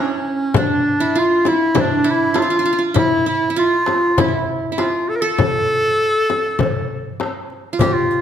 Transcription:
Already playing: qanun C#4 E4
0.00 clarinet C#4
0.25 darbuka ka
0.54 qanun D4, clarinet D4, frame drum, darbuka dum
0.85 darbuka ka
0.99 qanun E4, darbuka ka
1.15 qanun F4, clarinet F4
1.45 qanun E4, clarinet E4, frame drum
1.75 qanun D4, frame drum, darbuka dum
1.80 clarinet D4
2.04 qanun E4, darbuka ka
2.10 clarinet E4
2.34 qanun F4, darbuka tek, frame drum
2.39 clarinet F4, qanun F4
2.50 qanun F4
2.59 qanun F4
2.65 qanun F4, darbuka ka
2.73 qanun F4
2.79 qanun F4
2.94 qanun E4, clarinet E4, frame drum, darbuka dum
3.26 qanun E4, clarinet E4, darbuka ka
3.42 darbuka ka
3.50 qanun E4
3.56 qanun F4, clarinet F4
3.86 darbuka tek, frame drum
4.18 qanun E4, clarinet E4, darbuka dum, frame drum
4.49 darbuka ka
4.72 qanun E4
4.78 qanun F4, clarinet F4, darbuka tek, frame drum
5.09 clarinet A4, darbuka ka
5.16 clarinet A#4
5.21 clarinet A4, qanun A4
5.38 frame drum, darbuka dum
5.85 darbuka ka
6.00 darbuka ka
6.30 frame drum
6.59 frame drum, darbuka dum
7.20 darbuka tek, frame drum
7.50 darbuka ka
7.73 qanun F4
7.79 clarinet G4, qanun G4, riq, darbuka dum, frame drum
7.93 clarinet F4
8.10 riq, darbuka ka

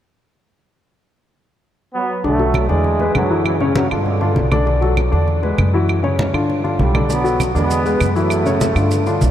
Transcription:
1.94 trombone section F#3 B3
2.24 upright bass B1, grand piano D3 D4 D5, trombone section F#3 A3, high conga
2.39 grand piano F#3 F#4 A4, high conga
2.54 high conga, claves
2.69 upright bass E2, grand piano D3 D4 D5, trombone section E3 G#3, high conga
2.84 high conga
3.00 grand piano G#3 G#4 B4, high conga
3.14 upright bass F#2, trombone section D3 F#3, high conga, claves
3.30 grand piano E3 E4 F#4
3.44 trombone section C#3 E3, high conga, claves
3.58 trombone section A2 C#3, grand piano C#3 C#4 C#5, high conga
3.75 trombone section C#3 F#3, high conga
3.89 upright bass G2, trombone section B2 D3, grand piano D3 D4 F4, claves
4.06 high conga
4.21 grand piano D3 D4 F4, high conga
4.36 upright bass B1, high conga
4.51 grand piano D3 D4 D5, high conga, claves
4.66 grand piano D3 D4 D5, high conga
4.81 grand piano F#3 F#4 A4, high conga
4.97 high conga, claves
5.11 upright bass E2, grand piano D3 D4 D5, high conga
5.28 high conga
5.42 grand piano G#3 G#4 B4, high conga
5.58 upright bass F#2, high conga, claves
5.73 grand piano E3 E4 F#4
5.89 high conga, claves
6.03 grand piano C#3 C#4 C#5, high conga
6.19 high conga
6.33 upright bass G2, grand piano D3 D4 F4, claves
6.50 high conga
6.63 grand piano D3 D4 F4, high conga
6.79 upright bass B1, trombone section D3 G3, high conga
6.94 grand piano D3 D4 D5, high conga, claves
7.09 grand piano D3 D4 D5, trombone section F#3 B3, high conga, maracas
7.24 grand piano F#3 F#4 A4, high conga, maracas
7.40 high conga, claves, maracas
7.55 upright bass E2, grand piano D3 D4 D5, trombone section G#3 B3, high conga, maracas
7.71 high conga, maracas
7.85 grand piano G#3 G#4 B4, high conga, maracas
8.01 upright bass F#2, high conga, claves, maracas
8.15 grand piano E3 E4 F#4, trombone section F#3 A3, maracas
8.30 high conga, claves, maracas
8.45 grand piano C#3 C#4 C#5, high conga, maracas
8.61 high conga, maracas
8.75 upright bass G2, grand piano D3 D4 F4, claves, maracas
8.91 high conga, maracas
9.06 grand piano D3 D4 F4, high conga, maracas
9.21 upright bass B1, high conga, maracas

